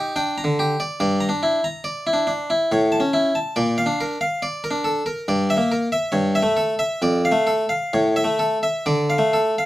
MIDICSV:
0, 0, Header, 1, 2, 480
1, 0, Start_track
1, 0, Key_signature, -1, "minor"
1, 0, Tempo, 854701
1, 566, Time_signature, 3, 2, 24, 8
1, 3934, Tempo, 928793
1, 4894, Tempo, 983607
1, 5282, End_track
2, 0, Start_track
2, 0, Title_t, "Harpsichord"
2, 0, Program_c, 0, 6
2, 0, Note_on_c, 0, 63, 41
2, 0, Note_on_c, 0, 67, 49
2, 90, Note_off_c, 0, 63, 0
2, 90, Note_on_c, 0, 62, 47
2, 91, Note_on_c, 0, 79, 54
2, 96, Note_off_c, 0, 67, 0
2, 212, Note_on_c, 0, 82, 59
2, 218, Note_off_c, 0, 79, 0
2, 249, Note_on_c, 0, 50, 49
2, 259, Note_off_c, 0, 62, 0
2, 333, Note_on_c, 0, 67, 53
2, 337, Note_off_c, 0, 82, 0
2, 416, Note_off_c, 0, 50, 0
2, 449, Note_on_c, 0, 74, 55
2, 456, Note_off_c, 0, 67, 0
2, 557, Note_off_c, 0, 74, 0
2, 563, Note_on_c, 0, 43, 63
2, 564, Note_on_c, 0, 74, 59
2, 677, Note_on_c, 0, 82, 68
2, 688, Note_off_c, 0, 74, 0
2, 716, Note_off_c, 0, 43, 0
2, 725, Note_on_c, 0, 62, 51
2, 802, Note_on_c, 0, 64, 52
2, 804, Note_off_c, 0, 82, 0
2, 890, Note_off_c, 0, 62, 0
2, 923, Note_on_c, 0, 82, 63
2, 928, Note_off_c, 0, 64, 0
2, 1035, Note_on_c, 0, 74, 55
2, 1049, Note_off_c, 0, 82, 0
2, 1161, Note_on_c, 0, 64, 49
2, 1166, Note_off_c, 0, 74, 0
2, 1198, Note_on_c, 0, 62, 50
2, 1269, Note_off_c, 0, 62, 0
2, 1276, Note_on_c, 0, 62, 47
2, 1289, Note_off_c, 0, 64, 0
2, 1401, Note_off_c, 0, 62, 0
2, 1405, Note_on_c, 0, 64, 50
2, 1525, Note_off_c, 0, 64, 0
2, 1525, Note_on_c, 0, 45, 71
2, 1528, Note_on_c, 0, 73, 59
2, 1640, Note_on_c, 0, 81, 69
2, 1653, Note_off_c, 0, 73, 0
2, 1682, Note_off_c, 0, 45, 0
2, 1685, Note_on_c, 0, 61, 48
2, 1761, Note_on_c, 0, 64, 57
2, 1770, Note_off_c, 0, 81, 0
2, 1855, Note_off_c, 0, 61, 0
2, 1883, Note_on_c, 0, 81, 57
2, 1891, Note_off_c, 0, 64, 0
2, 2000, Note_on_c, 0, 74, 67
2, 2002, Note_on_c, 0, 46, 69
2, 2007, Note_off_c, 0, 81, 0
2, 2122, Note_on_c, 0, 77, 70
2, 2131, Note_off_c, 0, 74, 0
2, 2161, Note_off_c, 0, 46, 0
2, 2169, Note_on_c, 0, 62, 51
2, 2250, Note_on_c, 0, 70, 59
2, 2252, Note_off_c, 0, 77, 0
2, 2337, Note_off_c, 0, 62, 0
2, 2364, Note_on_c, 0, 77, 60
2, 2375, Note_off_c, 0, 70, 0
2, 2485, Note_on_c, 0, 74, 67
2, 2492, Note_off_c, 0, 77, 0
2, 2606, Note_on_c, 0, 70, 59
2, 2612, Note_off_c, 0, 74, 0
2, 2643, Note_on_c, 0, 62, 53
2, 2721, Note_on_c, 0, 69, 47
2, 2733, Note_off_c, 0, 70, 0
2, 2814, Note_off_c, 0, 62, 0
2, 2842, Note_on_c, 0, 70, 54
2, 2844, Note_off_c, 0, 69, 0
2, 2965, Note_off_c, 0, 70, 0
2, 2967, Note_on_c, 0, 43, 59
2, 2968, Note_on_c, 0, 74, 55
2, 3089, Note_on_c, 0, 76, 69
2, 3093, Note_off_c, 0, 74, 0
2, 3121, Note_off_c, 0, 43, 0
2, 3129, Note_on_c, 0, 58, 56
2, 3210, Note_on_c, 0, 70, 55
2, 3213, Note_off_c, 0, 76, 0
2, 3294, Note_off_c, 0, 58, 0
2, 3326, Note_on_c, 0, 76, 57
2, 3333, Note_off_c, 0, 70, 0
2, 3437, Note_on_c, 0, 73, 63
2, 3441, Note_on_c, 0, 43, 62
2, 3445, Note_off_c, 0, 76, 0
2, 3567, Note_off_c, 0, 73, 0
2, 3568, Note_on_c, 0, 76, 72
2, 3599, Note_off_c, 0, 43, 0
2, 3609, Note_on_c, 0, 57, 56
2, 3688, Note_on_c, 0, 69, 58
2, 3694, Note_off_c, 0, 76, 0
2, 3779, Note_off_c, 0, 57, 0
2, 3814, Note_on_c, 0, 76, 57
2, 3817, Note_off_c, 0, 69, 0
2, 3937, Note_off_c, 0, 76, 0
2, 3941, Note_on_c, 0, 41, 65
2, 3943, Note_on_c, 0, 74, 53
2, 4061, Note_on_c, 0, 77, 69
2, 4062, Note_off_c, 0, 74, 0
2, 4090, Note_off_c, 0, 41, 0
2, 4095, Note_on_c, 0, 57, 49
2, 4174, Note_on_c, 0, 69, 47
2, 4181, Note_off_c, 0, 77, 0
2, 4260, Note_off_c, 0, 57, 0
2, 4290, Note_on_c, 0, 77, 52
2, 4297, Note_off_c, 0, 69, 0
2, 4409, Note_off_c, 0, 77, 0
2, 4415, Note_on_c, 0, 45, 58
2, 4415, Note_on_c, 0, 73, 47
2, 4532, Note_on_c, 0, 76, 71
2, 4538, Note_off_c, 0, 73, 0
2, 4567, Note_off_c, 0, 45, 0
2, 4574, Note_on_c, 0, 57, 42
2, 4651, Note_on_c, 0, 69, 46
2, 4657, Note_off_c, 0, 76, 0
2, 4741, Note_off_c, 0, 57, 0
2, 4774, Note_on_c, 0, 76, 46
2, 4778, Note_off_c, 0, 69, 0
2, 4893, Note_on_c, 0, 50, 58
2, 4893, Note_on_c, 0, 74, 49
2, 4897, Note_off_c, 0, 76, 0
2, 5009, Note_on_c, 0, 77, 48
2, 5019, Note_off_c, 0, 74, 0
2, 5049, Note_off_c, 0, 50, 0
2, 5051, Note_on_c, 0, 57, 46
2, 5124, Note_on_c, 0, 69, 49
2, 5137, Note_off_c, 0, 77, 0
2, 5221, Note_off_c, 0, 57, 0
2, 5246, Note_on_c, 0, 77, 43
2, 5256, Note_off_c, 0, 69, 0
2, 5282, Note_off_c, 0, 77, 0
2, 5282, End_track
0, 0, End_of_file